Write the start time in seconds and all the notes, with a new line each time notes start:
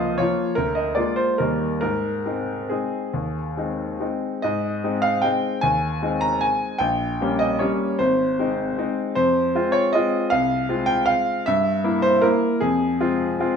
Already playing: C#2 F3 A#3 F4 D#5 F5
0.18 F3 A#3 F4 C#5
0.55 D2 A#4
0.75 D#5
0.95 G#3 A#3 F4 D5
1.16 C5
1.38 D#2 G3 A#3 D#4 A#4
1.81 G#2 A#4
2.26 G#3 C4 D#4
2.69 G#3 C4 D#4 G#4
3.14 D#2
3.57 G#3 C4 D#4
4.00 G#3 C4 D#4
4.42 G#2 D#5
4.84 G#3 C4 D#4
5.02 F5
5.22 G#3 C4 D#4 G5
5.61 D#2 G#5
6.02 G#3 C4 D#4
6.21 A#5
6.41 G#5
6.78 A#1 G5
7.21 G3 A#3 C#4
7.39 D#5
7.59 G3 A#3 C#4 C#5
7.99 G#1 C5
8.39 G#3 C4 D#4
8.78 G#3 C4 D#4
9.15 F2 C5
9.55 G#3 C4 F4
9.72 C#5
9.93 G#3 C4 F4 D#5
10.30 C2 F5
10.69 G#3 C4 F4
10.86 G5
11.06 F5
11.46 G2 E5
11.84 A#3 E4
12.02 C5
12.22 A#3 E4 A#4
12.61 F2 G#4
13.01 G#3 C4 F4
13.40 G#3 C4 F4